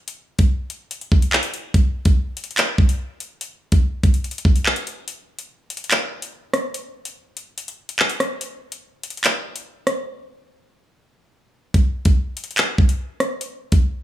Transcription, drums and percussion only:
0.08 closed hi-hat medium
0.39 kick loud
0.39 closed hi-hat medium
0.70 closed hi-hat medium
0.91 closed hi-hat medium
1.01 closed hi-hat medium
1.12 kick loud
1.22 closed hi-hat medium
1.33 clap loud
1.43 closed hi-hat medium
1.54 closed hi-hat medium
1.74 kick loud
1.74 closed hi-hat medium
2.05 kick loud
2.05 closed hi-hat medium
2.37 closed hi-hat medium
2.44 closed hi-hat medium
2.51 closed hi-hat soft
2.58 clap loud
2.58 closed hi-hat loud
2.78 kick loud
2.89 closed hi-hat medium
3.20 closed hi-hat medium
3.41 closed hi-hat medium
3.72 kick loud
3.72 closed hi-hat medium
4.03 kick medium
4.03 closed hi-hat medium
4.14 closed hi-hat medium
4.24 closed hi-hat medium
4.31 closed hi-hat medium
4.38 closed hi-hat medium
4.45 kick loud
4.56 closed hi-hat medium
4.66 clap loud
4.76 closed hi-hat medium
4.87 closed hi-hat medium
5.08 closed hi-hat medium
5.39 closed hi-hat medium
5.70 closed hi-hat medium
5.77 closed hi-hat medium
5.84 closed hi-hat soft
5.91 clap loud
5.91 closed hi-hat medium
6.22 closed hi-hat medium
6.54 cross-stick medium
6.54 closed hi-hat medium
6.74 closed hi-hat medium
7.05 closed hi-hat medium
7.37 closed hi-hat medium
7.58 closed hi-hat medium
7.68 closed hi-hat soft
7.89 closed hi-hat medium
7.99 clap loud
8.10 closed hi-hat medium
8.20 cross-stick medium
8.20 closed hi-hat medium
8.41 closed hi-hat medium
8.72 closed hi-hat medium
9.03 closed hi-hat medium
9.10 closed hi-hat medium
9.17 closed hi-hat soft
9.24 clap loud
9.24 closed hi-hat medium
9.56 closed hi-hat medium
9.87 cross-stick medium
9.87 closed hi-hat medium
11.74 kick loud
11.74 closed hi-hat medium
12.05 kick loud
12.05 closed hi-hat medium
12.37 closed hi-hat medium
12.44 closed hi-hat medium
12.51 closed hi-hat soft
12.58 clap loud
12.58 closed hi-hat medium
12.78 kick loud
12.89 closed hi-hat medium
13.20 cross-stick medium
13.20 closed hi-hat medium
13.41 closed hi-hat medium
13.72 kick loud
13.72 closed hi-hat medium

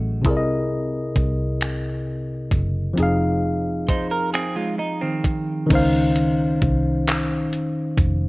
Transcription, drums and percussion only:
0.25 kick loud
0.25 closed hi-hat medium
1.16 kick medium
1.16 closed hi-hat medium
1.61 finger snap loud
1.61 closed hi-hat medium
2.51 kick medium
2.51 closed hi-hat medium
2.98 closed hi-hat medium
3.89 kick medium
3.89 closed hi-hat medium
4.34 finger snap loud
4.34 closed hi-hat medium
5.24 kick medium
5.24 closed hi-hat medium
5.70 kick loud
5.70 closed hi-hat medium
5.70 crash loud
6.16 closed hi-hat medium
6.62 kick medium
6.62 closed hi-hat medium
7.07 clap loud
7.07 closed hi-hat medium
7.53 closed hi-hat medium
7.97 kick medium
7.97 closed hi-hat medium

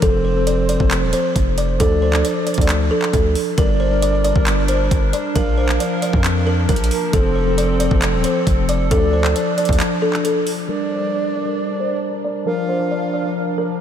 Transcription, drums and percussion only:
0.02 kick loud
0.02 closed hi-hat medium
0.47 closed hi-hat medium
0.69 closed hi-hat medium
0.80 kick loud
0.91 clap loud
0.91 closed hi-hat medium
1.13 closed hi-hat medium
1.36 kick medium
1.36 closed hi-hat medium
1.58 closed hi-hat medium
1.80 kick loud
1.80 closed hi-hat medium
2.13 clap loud
2.25 closed hi-hat medium
2.47 closed hi-hat medium
2.54 kick loud
2.54 closed hi-hat medium
2.61 closed hi-hat medium
2.69 clap loud
2.69 closed hi-hat medium
3.02 clap medium
3.13 kick medium
3.13 closed hi-hat medium
3.35 open hi-hat medium
3.58 kick loud
3.58 closed hi-hat medium
4.02 closed hi-hat medium
4.24 closed hi-hat medium
4.36 kick loud
4.47 clap loud
4.47 closed hi-hat medium
4.68 closed hi-hat medium
4.91 kick loud
4.91 closed hi-hat medium
5.13 closed hi-hat medium
5.36 kick loud
5.36 closed hi-hat medium
5.69 clap loud
5.80 closed hi-hat medium
6.02 closed hi-hat medium
6.13 kick loud
6.24 clap loud
6.24 closed hi-hat medium
6.69 kick loud
6.69 closed hi-hat medium
6.76 closed hi-hat medium
6.84 closed hi-hat medium
6.91 open hi-hat medium
7.13 kick loud
7.13 closed hi-hat medium
7.58 closed hi-hat medium
7.80 closed hi-hat medium
7.91 kick loud
8.02 clap loud
8.02 closed hi-hat medium
8.24 closed hi-hat medium
8.47 kick loud
8.47 closed hi-hat medium
8.69 closed hi-hat medium
8.91 kick loud
8.91 closed hi-hat medium
9.24 clap loud
9.36 closed hi-hat medium
9.58 closed hi-hat medium
9.65 kick loud
9.65 closed hi-hat medium
9.73 closed hi-hat medium
9.80 clap loud
9.80 closed hi-hat medium
10.13 clap medium
10.25 closed hi-hat medium
10.47 open hi-hat medium

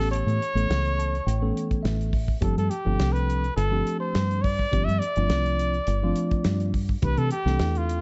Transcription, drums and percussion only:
0.13 closed hi-hat medium
0.28 closed hi-hat soft
0.42 closed hi-hat medium
0.57 closed hi-hat soft
0.71 snare loud
0.71 closed hi-hat medium
0.85 closed hi-hat soft
1.00 closed hi-hat medium
1.15 closed hi-hat soft
1.28 closed hi-hat medium
1.57 closed hi-hat medium
1.71 kick medium
1.71 closed hi-hat soft
1.85 snare medium
1.85 closed hi-hat medium
2.01 closed hi-hat soft
2.13 kick medium
2.13 open hi-hat medium
2.28 kick medium
2.42 kick loud
2.42 closed hi-hat medium
2.58 closed hi-hat soft
2.71 closed hi-hat medium
3.00 snare loud
3.00 closed hi-hat medium
3.16 closed hi-hat soft
3.30 closed hi-hat soft
3.44 closed hi-hat soft
3.58 closed hi-hat medium
3.87 closed hi-hat soft
4.15 snare medium
4.15 closed hi-hat medium
4.31 closed hi-hat soft
4.44 kick medium
4.44 open hi-hat medium
4.59 kick medium
4.73 kick medium
4.73 closed hi-hat medium
4.89 closed hi-hat soft
5.02 closed hi-hat medium
5.16 closed hi-hat soft
5.30 snare loud
5.30 closed hi-hat medium
5.46 closed hi-hat soft
5.59 closed hi-hat medium
5.74 closed hi-hat soft
5.87 closed hi-hat medium
6.16 closed hi-hat medium
6.31 kick medium
6.31 closed hi-hat soft
6.44 snare loud
6.44 closed hi-hat medium
6.60 closed hi-hat soft
6.74 kick medium
6.74 open hi-hat medium
6.89 kick medium
7.02 kick loud
7.02 closed hi-hat medium
7.17 closed hi-hat soft
7.31 closed hi-hat medium
7.47 snare soft
7.59 snare loud
7.59 closed hi-hat medium
7.75 closed hi-hat soft
7.89 closed hi-hat medium

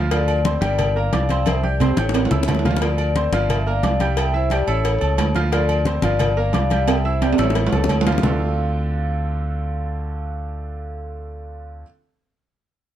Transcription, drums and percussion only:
0.11 cowbell loud
0.11 high conga soft
0.11 low agogo loud
0.28 high conga soft
0.28 low agogo medium
0.45 cowbell medium
0.45 high conga loud
0.45 low timbale medium
0.62 cowbell medium
0.62 high conga loud
0.62 low agogo medium
0.79 cowbell loud
0.79 high conga soft
0.79 low conga medium
0.79 low agogo loud
0.96 high conga soft
1.13 cowbell medium
1.13 high conga medium
1.13 low timbale medium
1.13 low agogo medium
1.29 cowbell medium
1.29 high conga medium
1.29 low agogo medium
1.46 cowbell loud
1.46 high conga loud
1.46 low agogo loud
1.64 high conga medium
1.80 cowbell medium
1.80 low conga medium
1.80 high timbale medium
1.80 low agogo medium
1.97 high bongo medium
1.97 high conga loud
1.97 low agogo medium
2.09 high bongo loud
2.14 cowbell loud
2.14 high timbale loud
2.14 low agogo medium
2.25 low timbale loud
2.31 high bongo medium
2.31 low conga loud
2.31 low agogo medium
2.43 low bongo loud
2.48 cowbell medium
2.48 low conga medium
2.48 low timbale loud
2.48 low agogo loud
2.54 low bongo medium
2.59 low timbale loud
2.65 cowbell medium
2.65 low bongo medium
2.65 low conga medium
2.71 low timbale medium
2.77 low bongo medium
2.82 cowbell loud
2.82 high conga soft
2.82 low agogo loud
2.98 high conga soft
2.98 low agogo loud
3.16 cowbell medium
3.16 high conga medium
3.16 low timbale medium
3.33 cowbell medium
3.33 high conga loud
3.33 low agogo medium
3.49 cowbell loud
3.49 high conga soft
3.49 low conga medium
3.49 low agogo loud
3.66 high conga soft
3.83 cowbell medium
3.83 high conga loud
3.83 low timbale medium
3.83 low agogo medium
4.00 cowbell medium
4.00 high conga medium
4.00 low agogo medium
4.17 cowbell loud
4.17 high conga soft
4.17 low agogo loud
4.34 high conga soft
4.50 cowbell medium
4.50 high conga medium
4.50 low timbale medium
4.50 low agogo medium
4.67 high conga soft
4.67 low agogo medium
4.84 cowbell loud
4.84 high conga soft
4.84 low agogo medium
5.01 high conga soft
5.01 low agogo loud
5.17 cowbell medium
5.17 high conga soft
5.17 low timbale medium
5.17 low agogo loud
5.35 cowbell medium
5.35 high conga medium
5.52 cowbell loud
5.52 high conga soft
5.52 low agogo medium
5.69 high conga soft
5.69 low agogo loud
5.85 cowbell medium
5.85 high conga loud
5.85 low timbale medium
6.02 cowbell medium
6.02 high conga loud
6.02 low agogo medium
6.19 cowbell loud
6.19 high conga soft
6.19 low conga medium
6.19 low agogo loud
6.37 high conga soft
6.53 cowbell medium
6.53 high conga medium
6.53 low timbale medium
6.53 low agogo medium
6.70 cowbell medium
6.70 high conga medium
6.70 low agogo medium
6.88 cowbell loud
6.88 high conga soft
6.88 high timbale loud
6.88 low agogo loud
7.05 high conga soft
7.22 cowbell medium
7.22 high conga medium
7.22 high timbale medium
7.22 low agogo medium
7.33 high timbale loud
7.38 high bongo medium
7.38 high conga soft
7.38 low agogo loud
7.44 low timbale medium
7.50 high bongo medium
7.55 cowbell loud
7.55 high conga soft
7.55 low timbale medium
7.55 low agogo medium
7.67 low timbale loud
7.73 low bongo medium
7.73 high conga soft
7.73 low agogo medium
7.84 low bongo loud
7.89 cowbell medium
7.89 high conga soft
7.89 low timbale medium
7.89 low agogo loud
8.01 low timbale loud
8.07 cowbell medium
8.07 low bongo loud
8.12 low timbale medium
8.18 low bongo medium
8.23 low bongo loud
8.23 low conga loud
8.23 low timbale loud

